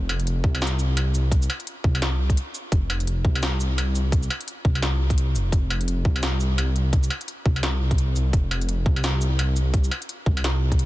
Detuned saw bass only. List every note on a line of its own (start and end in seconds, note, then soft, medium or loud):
0.00 0.43 F1 loud
0.44 1.48 C2 medium
1.84 2.37 C2 medium
2.72 3.24 F1 loud
3.25 4.29 C2 medium
4.65 5.36 C2 medium
5.35 5.51 F1 loud
5.52 6.04 F1 loud
6.05 7.09 C2 medium
7.46 8.15 C2 medium
8.16 8.32 C2 loud
8.33 8.85 F1 loud
8.86 9.90 C2 medium
10.26 10.86 C2 medium